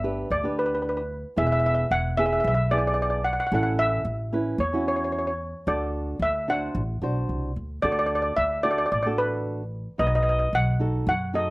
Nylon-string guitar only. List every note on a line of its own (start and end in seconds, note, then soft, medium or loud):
0.03 0.28 D4 medium
0.03 0.28 G4 medium
0.03 0.28 B4 medium
0.43 1.00 D4 medium
0.43 1.01 G4 medium
0.43 1.01 B4 medium
1.36 1.86 B3 medium
1.36 1.86 E4 medium
1.36 1.86 G#4 medium
2.18 2.50 B3 medium
2.18 2.50 E4 medium
2.18 2.51 G#4 medium
2.71 3.20 B3 medium
2.71 3.20 E4 medium
2.71 3.21 G#4 medium
3.52 4.01 C#4 medium
3.52 4.01 E4 medium
3.52 4.01 A4 medium
4.33 4.57 C#4 medium
4.33 4.57 E4 medium
4.33 4.58 B4 medium
4.73 5.30 C#4 medium
4.73 5.30 E4 medium
4.73 5.31 F#4 medium
5.67 6.16 D4 medium
5.67 6.16 F#4 medium
5.67 6.16 A4 medium
6.48 6.81 D4 medium
6.48 6.81 F#4 medium
6.48 6.81 C5 medium
7.02 7.51 D4 medium
7.02 7.51 F#4 medium
7.02 7.52 C5 medium
7.83 8.32 D4 medium
7.83 8.32 F#4 medium
7.83 8.33 A4 medium
8.63 8.88 D4 medium
8.63 8.89 F#4 medium
8.63 8.89 A4 medium
9.05 9.62 D4 medium
9.05 9.62 F#4 medium
9.05 9.62 A4 medium
9.98 10.47 D#4 medium
9.98 10.48 F#4 medium
9.98 10.48 B4 medium
10.80 11.12 D#4 medium
10.80 11.13 F#4 medium
10.80 11.13 A4 medium
11.33 11.50 D#4 medium
11.33 11.50 F#4 medium
11.33 11.50 A4 medium